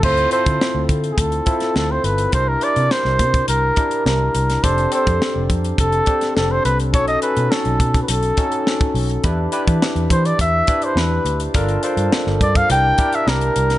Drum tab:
CC |x---------------|----------------|----------------|----------------|
HH |-xxx--xxxxxx--xx|x-xx--xxx-xx--xx|xxxx--xxxxxx--xx|xxxx-xxxxxxx-xox|
SD |----o------oo---|----oo------o--o|----o------oo---|----o-------o---|
BD |o--o--o-o-o-----|o-----oo--o-----|o--o--o-o-o-----|o-----oo--o--o--|

CC |----------------|----------------|
HH |x-xx-xxxx-xx--xx|xxxx--xxx-xx-xxx|
SD |----o-------o---|----oo------o--o|
BD |o--o--o-o-o-----|o-----oo--o-----|